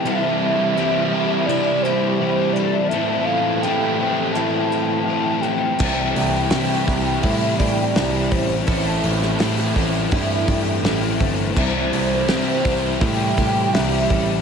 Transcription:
<<
  \new Staff \with { instrumentName = "Soft synth lead" } { \time 4/4 \key a \minor \tempo 4 = 83 e''2 d''8 c''8 c''8 d''8 | e''8 f''8 g''4 a''4 a''8 g''8~ | g''2 e''8 d''4 c''8~ | c''8 r2. r8 |
c''2 g''4 e''4 | }
  \new Staff \with { instrumentName = "Twelve-string acoustic guitar" } { \time 4/4 \key a \minor a'4 g'4 e'8 g'4 a'8 | a'4 g'4 e'8 g'4 a'8 | a'4 g'4 e'8 g'4 a'8 | a'4 g'4 e'8 g'4 a'8 |
a'4 g'4 e'8 g'4 a'8 | }
  \new Staff \with { instrumentName = "Overdriven electric guitar" } { \time 4/4 \key a \minor <c e g c' e'>4 <e g c' e'>8 <g c' e'>8 <c e g c' e'>4 <e g c' e'>4 | <a, e a c' e'>4 <e a c' e'>8 <a c' e'>8 <a, e a c' e'>4 <e a c' e'>4 | <c e g c' e'>4 <e g c' e'>8 <g c' e'>8 <c e g c' e'>4 <e g c' e'>4 | <a, e a c' e'>4 <e a c' e'>8 <a c' e'>8 <a, e a c' e'>4 <e a c' e'>4 |
<c e g c' e'>4 <e g c' e'>8 <g c' e'>8 <c e g c' e'>4 <e g c' e'>4 | }
  \new Staff \with { instrumentName = "Overdriven electric guitar" } { \clef bass \time 4/4 \key a \minor <c e g c' e'>1 | <a, e a c' e'>1 | <c e g c' e'>1 | <a, e a c' e'>1 |
<c e g c' e'>1 | }
  \new Staff \with { instrumentName = "Grand piano" } { \clef bass \time 4/4 \key a \minor r1 | r1 | c,8 c,8 c8 c,8 a,8 a,8 c,8 a,,8 | a,,8 a,,8 a,8 a,,8 g,8 g,8 a,,8 g,,8 |
c,8 c,8 c8 c,8 a,8 a,8 c,8 a,,8 | }
  \new DrumStaff \with { instrumentName = "Drums" } \drummode { \time 4/4 r4 r4 r4 r4 | r4 r4 r4 r4 | <cymc bd>8 hho8 <hho sn>8 <hho bd sn>8 <hho bd>8 <hho bd>8 <hho sn>8 <hho bd>8 | <hho bd>8 hho16 sn16 <hho sn>8 <hho bd>8 <hho bd>8 <hho bd>8 <hho sn>8 <hho bd>8 |
<cymc bd>8 hho8 <hho sn>8 <hho bd sn>8 <hho bd>8 <hho bd>8 <hho sn>8 <hho bd>8 | }
>>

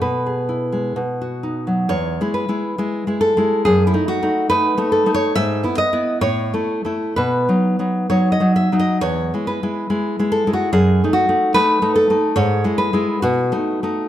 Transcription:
\new Staff \with { instrumentName = "Nylon-string guitar" } { \time 2/4 \key e \major \tempo 4 = 68 << { b'4. r8 | cis''8 b'4 a'8 | gis'16 e'16 fis'8 b'8 a'16 cis''16 | e''8 dis''8 cis''4 |
b'4 cis''16 dis''16 e''16 dis''16 | cis''8 b'4 a'16 fis'16 | gis'8 fis'8 b'8 a'8 | cis''8 b'8 fis'4 | } \\ { b,16 gis'16 e'16 gis16 b,16 fis'16 dis'16 fis16 | \tuplet 3/2 { e,8 <gis e'>8 <gis e'>8 <gis e'>8 <gis e'>8 <gis e'>8 } | \tuplet 3/2 { fis,8 <a dis'>8 <a dis'>8 <a dis'>8 <a dis'>8 <a dis'>8 } | \tuplet 3/2 { gis,8 <b e'>8 <b e'>8 a,8 <a e'>8 <a e'>8 } |
\tuplet 3/2 { b,8 <fis dis'>8 <fis dis'>8 <fis dis'>8 <fis dis'>8 <fis dis'>8 } | \tuplet 3/2 { e,8 <gis e'>8 <gis e'>8 <gis e'>8 <gis e'>8 <gis e'>8 } | \tuplet 3/2 { fis,8 <a dis'>8 <a dis'>8 <a dis'>8 <a dis'>8 <a dis'>8 } | \tuplet 3/2 { gis,8 <gis e'>8 <gis e'>8 b,8 <a dis'>8 <a dis'>8 } | } >> }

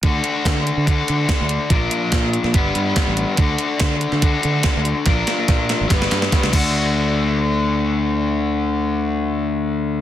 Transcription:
<<
  \new Staff \with { instrumentName = "Overdriven electric guitar" } { \time 4/4 \key d \major \tempo 4 = 143 <d d' fis' a'>2 <d d' fis' a'>2 | <bes, f bes d' f' bes'>2 <g b d' b'>2 | <d d' fis' a'>2 <d d' fis' a'>2 | <bes d' f' bes'>2 <g b d' b'>4. <d a d' fis'>8~ |
<d a d' fis'>1~ | <d a d' fis'>1 | }
  \new Staff \with { instrumentName = "Fingered electric bass" } { \clef bass \time 4/4 \key d \major d,8 r8 d8. d8. d8 r16 d,8 r16 | bes,,8 r8 bes,8. bes,16 g,,8 g,8 r16 a,,8 r16 | d,8 r8 d8. d8. d8 r16 d,8 r16 | bes,,8 r8 bes,8. gis,,16 g,,8 g,8 r16 cis,16 d,8~ |
d,1~ | d,1 | }
  \new DrumStaff \with { instrumentName = "Drums" } \drummode { \time 4/4 <hh bd>8 hh8 <hh bd sn>8 hh8 <hh bd>8 hh8 <hh bd sn>8 hh8 | <hh bd>8 hh8 <hh bd sn>8 hh16 sn16 <hh bd>8 hh8 <hh bd sn>8 hh8 | <hh bd>8 hh8 <hh bd sn>8 hh16 sn16 <hh bd>8 hh8 <hh bd sn>8 hh8 | <hh bd sn>8 <hh sn>8 <hh bd sn>8 <hh sn>8 <hh bd sn>16 sn16 <hh sn>16 sn16 <hh bd sn>16 sn16 <cymc bd>8 |
r4 r4 r4 r4 | r4 r4 r4 r4 | }
>>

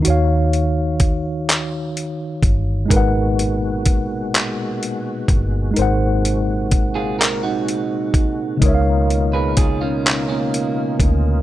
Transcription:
<<
  \new Staff \with { instrumentName = "Tine electric piano" } { \time 6/8 \key gis \dorian \tempo 4. = 42 <dis dis' fis' cis'' eis''>2. | <gis dis' ais' b' fis''>2. | <gis dis' ais' bis' fis''>2. | <cis gis dis' ais' cis'' e'' eis''>2. | }
  \new Staff \with { instrumentName = "Clean electric guitar" } { \time 6/8 \key gis \dorian r2. | r2. | r4 r16 <eis' gis'>16 <fis' ais'>16 <dis' fis'>4~ <dis' fis'>16 | r8. <gis' b'>16 <eis' gis'>16 <cis' eis'>8 <ais cis'>4~ <ais cis'>16 | }
  \new Staff \with { instrumentName = "Tonewheel organ" } { \clef bass \time 6/8 \key gis \dorian << { r2. | <ais, gis fis'>2.~ | <ais, gis fis'>2. | <b, ais eis'>2. | } \\ { r2. | b,2. | bis,2. | dis'2. | } >> }
  \new Staff \with { instrumentName = "Fingered electric bass" } { \clef bass \time 6/8 \key gis \dorian dis,2~ dis,8 g,,8 | gis,,2~ gis,,8 g,,8 | gis,,2~ gis,,8 bis,,8 | cis,2~ cis,8 d,8 | }
  \new DrumStaff \with { instrumentName = "Drums" } \drummode { \time 6/8 hh8 hh8 <hh bd>8 <hc hh>8 hh8 <hh bd>8 | <hh bd>8 hh8 <hh bd>8 <hc hh>8 hh8 <hh bd>8 | hh8 hh8 <hh bd>8 <hc hh>8 hh8 <hh bd>8 | <hh bd>8 hh8 <hh bd>8 <hc hh>8 hh8 <hh bd>8 | }
>>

